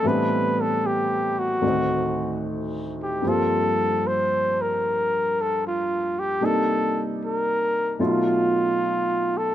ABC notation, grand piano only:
X:1
M:4/4
L:1/8
Q:"Swing" 1/4=75
K:Gm
V:1 name="Grand piano"
[A,,=E,G,=B,CD]4 [D,,A,,_E,CE]4 | [G,,F,G,B,CF]8 | [C,G,B,DE]4 [=B,,^F,A,^D^E]4 |]